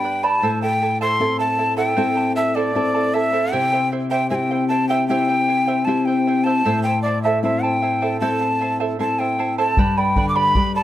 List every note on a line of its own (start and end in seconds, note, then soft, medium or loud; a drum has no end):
0.00 0.39 G2 medium
0.00 0.40 B3 soft
0.00 0.40 D4 soft
0.00 0.40 G4 soft
0.00 0.25 G5 medium
0.00 0.23 G5 soft
0.04 0.23 B4 medium
0.04 0.22 D5 soft
0.04 0.22 B5 medium
0.23 0.43 G4 medium
0.23 0.43 B4 medium
0.23 0.43 D5 medium
0.23 0.43 G5 medium
0.23 0.62 A5 medium
0.23 0.43 B5 medium
0.42 3.50 A2 soft
0.42 0.62 E4 medium
0.42 0.62 A4 medium
0.42 0.62 C5 medium
0.42 0.62 E5 medium
0.42 0.61 A5 medium
0.62 0.81 E4 soft
0.62 0.81 A4 medium
0.62 0.98 G5 medium
0.62 0.82 A5 medium
0.82 1.00 E4 medium
0.82 1.00 A4 medium
0.82 1.00 E5 soft
0.82 1.00 A5 medium
1.01 1.19 E4 medium
1.01 1.20 A4 medium
1.01 1.21 C5 soft
1.01 1.19 E5 medium
1.01 1.20 A5 medium
1.01 1.37 C6 medium
1.20 1.96 C4 soft
1.20 1.96 E4 soft
1.20 1.39 E4 medium
1.20 1.96 A4 medium
1.20 1.39 A4 medium
1.20 1.40 E5 soft
1.20 1.38 A5 soft
1.39 1.57 E4 soft
1.39 1.58 A4 soft
1.39 1.58 A5 soft
1.39 1.76 A5 medium
1.58 1.77 E4 medium
1.58 1.76 A4 medium
1.58 1.76 E5 medium
1.58 1.76 A5 medium
1.77 1.96 E4 medium
1.77 1.96 A4 medium
1.77 1.95 C5 soft
1.77 1.95 E5 soft
1.77 2.33 G5 medium
1.77 1.97 A5 medium
1.96 2.73 C4 soft
1.96 2.17 E4 medium
1.96 2.73 E4 soft
1.96 2.16 A4 medium
1.96 2.74 A4 medium
1.96 2.17 C5 medium
1.96 2.17 E5 medium
1.96 2.16 A5 medium
2.17 2.35 E4 soft
2.17 2.36 A4 soft
2.17 2.36 A5 soft
2.36 2.55 E4 soft
2.36 2.55 A4 medium
2.36 2.57 E5 medium
2.36 2.55 E5 soft
2.36 2.55 A5 medium
2.55 2.74 E4 medium
2.55 2.75 A4 medium
2.55 2.76 C5 soft
2.55 3.15 D5 medium
2.55 2.74 E5 soft
2.55 2.75 A5 medium
2.75 3.51 C4 soft
2.75 3.51 E4 soft
2.75 2.95 E4 medium
2.75 2.94 A4 medium
2.75 3.51 A4 soft
2.75 2.95 E5 soft
2.75 2.93 A5 medium
2.94 3.13 E4 soft
2.94 3.14 A4 soft
2.94 3.14 A5 soft
3.14 3.32 E4 medium
3.14 3.32 A4 medium
3.14 3.54 E5 medium
3.14 3.32 E5 soft
3.14 3.32 A5 medium
3.33 3.52 E4 medium
3.33 3.53 A4 medium
3.33 3.52 C5 soft
3.33 3.52 E5 soft
3.33 3.53 A5 medium
3.52 6.61 C3 medium
3.52 3.73 E4 medium
3.52 3.73 G4 medium
3.52 3.72 C5 medium
3.52 3.73 E5 medium
3.52 3.88 G5 loud
3.52 3.71 G5 medium
3.73 3.91 E4 soft
3.73 3.91 C5 medium
3.73 3.92 G5 medium
3.92 4.10 E4 medium
3.92 4.10 C5 medium
3.92 4.10 E5 medium
3.92 4.10 G5 soft
4.10 4.30 E4 medium
4.10 4.32 G4 soft
4.10 4.30 C5 medium
4.10 4.29 E5 medium
4.10 4.29 G5 medium
4.10 4.30 G5 medium
4.30 5.07 C4 soft
4.30 4.51 E4 medium
4.30 5.07 E4 soft
4.30 5.07 G4 soft
4.30 4.50 C5 soft
4.30 4.51 E5 soft
4.30 4.50 G5 medium
4.30 4.36 G#5 medium
4.35 4.67 G5 medium
4.51 4.70 E4 soft
4.51 4.69 C5 soft
4.51 4.70 G5 medium
4.68 4.89 E4 medium
4.68 4.89 C5 medium
4.68 4.89 E5 soft
4.68 4.89 G5 medium
4.68 4.88 A5 medium
4.89 5.09 E4 medium
4.89 5.09 G4 soft
4.89 5.09 C5 medium
4.89 5.09 E5 medium
4.89 5.07 G5 medium
4.89 5.10 G5 medium
5.08 5.85 C4 soft
5.08 5.85 E4 soft
5.08 5.30 E4 medium
5.08 5.29 G4 medium
5.08 5.85 G4 soft
5.08 5.29 C5 medium
5.08 5.30 E5 medium
5.08 5.86 G5 medium
5.08 5.28 G5 medium
5.29 5.47 E4 soft
5.29 5.48 C5 soft
5.29 5.48 G5 soft
5.48 5.67 E4 medium
5.48 5.66 C5 soft
5.48 5.67 E5 soft
5.48 5.66 G5 medium
5.67 5.87 E4 medium
5.67 5.88 G4 soft
5.67 5.87 C5 medium
5.67 5.86 E5 medium
5.67 5.87 G5 medium
5.85 6.63 C4 soft
5.85 6.63 E4 soft
5.85 6.07 E4 medium
5.85 6.63 G4 soft
5.85 6.07 C5 medium
5.85 6.07 E5 medium
5.85 6.06 G5 medium
5.85 6.07 A5 medium
6.05 6.26 E4 soft
6.05 6.27 C5 soft
6.05 6.45 G5 medium
6.05 6.27 G5 soft
6.27 6.45 E4 medium
6.27 6.45 C5 medium
6.27 6.46 E5 soft
6.27 6.45 G5 medium
6.44 6.65 E4 medium
6.44 6.66 G4 soft
6.44 6.65 C5 medium
6.44 6.64 E5 medium
6.44 6.65 G5 medium
6.44 6.83 A5 medium
6.65 9.73 A2 medium
6.65 6.85 E4 medium
6.65 6.85 A4 medium
6.65 6.85 C5 medium
6.65 6.85 E5 medium
6.65 6.84 A5 medium
6.83 7.04 E4 soft
6.83 7.05 C5 soft
6.83 7.02 G5 medium
6.83 7.05 A5 soft
7.02 7.24 E4 medium
7.02 7.24 C5 soft
7.02 7.22 D5 medium
7.02 7.24 E5 soft
7.02 7.24 A5 medium
7.23 7.43 E4 medium
7.23 7.43 A4 soft
7.23 7.43 C5 medium
7.23 7.42 E5 medium
7.23 7.43 E5 medium
7.23 7.44 A5 medium
7.43 8.19 C4 soft
7.43 8.19 E4 soft
7.43 7.63 E4 medium
7.43 8.19 A4 soft
7.43 7.63 C5 soft
7.43 7.64 E5 medium
7.43 7.63 E5 medium
7.43 7.62 A5 medium
7.62 7.81 E4 soft
7.62 7.82 C5 soft
7.62 8.20 G5 medium
7.62 7.82 A5 soft
7.82 8.01 E4 medium
7.82 8.01 C5 soft
7.82 8.01 E5 soft
7.82 8.01 A5 medium
8.02 8.21 E4 medium
8.02 8.21 A4 soft
8.02 8.21 C5 medium
8.02 8.21 E5 medium
8.02 8.21 A5 medium
8.20 8.97 C4 soft
8.20 8.97 E4 soft
8.20 8.41 E4 medium
8.20 8.41 A4 medium
8.20 8.97 A4 soft
8.20 8.41 C5 medium
8.20 8.41 E5 medium
8.20 8.75 A5 medium
8.20 8.40 A5 medium
8.41 8.60 E4 soft
8.41 8.60 C5 soft
8.41 8.60 A5 soft
8.60 8.80 E4 soft
8.60 8.79 C5 soft
8.60 8.80 E5 soft
8.60 8.79 A5 medium
8.80 8.99 E4 soft
8.80 8.99 A4 medium
8.80 8.99 C5 medium
8.80 8.98 E5 soft
8.80 8.99 A5 medium
8.99 9.75 C4 soft
8.99 9.75 E4 soft
8.99 9.19 E4 soft
8.99 9.75 A4 soft
8.99 9.19 C5 soft
8.99 9.19 E5 soft
8.99 9.18 A5 medium
8.99 9.20 A5 medium
9.19 9.38 E4 soft
9.19 9.38 C5 medium
9.19 9.58 G5 medium
9.19 9.38 A5 soft
9.38 9.57 E4 medium
9.38 9.57 C5 medium
9.38 9.58 E5 medium
9.38 9.57 A5 medium
9.58 9.78 E4 medium
9.58 9.78 A4 medium
9.58 9.78 C5 medium
9.58 9.78 E5 medium
9.58 9.77 A5 medium
9.58 9.99 A5 medium
9.77 10.83 G2 medium
9.77 9.97 G4 medium
9.77 9.97 B4 medium
9.77 9.97 D5 medium
9.77 9.97 G5 medium
9.77 9.96 B5 medium
9.77 bombo low medium
9.97 10.16 B4 soft
9.97 10.16 D5 soft
9.97 10.28 G5 medium
9.97 10.16 B5 medium
10.16 10.54 D3 medium
10.16 10.35 B4 medium
10.16 10.35 D5 medium
10.16 10.35 G5 soft
10.16 10.34 B5 medium
10.16 bombo low medium
10.29 10.38 D6 medium
10.36 10.55 G4 soft
10.36 10.55 B4 soft
10.36 10.55 D5 medium
10.36 10.54 G5 medium
10.36 10.55 B5 medium
10.36 10.75 B5 medium
10.55 10.83 G3 medium
10.55 10.75 B4 medium
10.55 10.75 D5 medium
10.55 10.75 G5 medium
10.55 10.74 B5 medium
10.55 bombo low medium
10.76 10.83 B4 soft
10.76 10.83 D5 soft
10.76 10.83 A5 medium
10.76 10.83 B5 medium